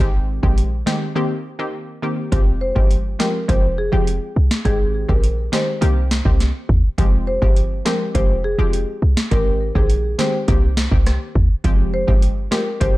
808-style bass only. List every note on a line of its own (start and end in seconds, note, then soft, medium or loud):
0.00 0.39 G#1 loud
0.43 0.83 A#1 loud
2.32 2.72 F1 loud
2.76 3.16 G1 medium
3.49 3.89 F1 loud
3.93 4.19 F1 medium
4.36 4.50 C2 loud
4.65 5.05 G#1 loud
5.09 5.49 A#1 medium
5.82 6.22 C2 loud
6.25 6.52 C2 medium
6.69 6.82 D#2 loud
6.98 7.38 F1 loud
7.42 7.82 G1 medium
8.15 8.55 F1 loud
8.58 8.85 F1 medium
9.02 9.16 C2 loud
9.31 9.71 G#1 loud
9.75 10.15 A#1 loud
10.48 10.88 C2 loud
10.92 11.18 C2 medium
11.35 11.49 D#2 medium
11.65 12.04 F1 loud
12.08 12.48 G1 medium
12.81 12.97 F1 loud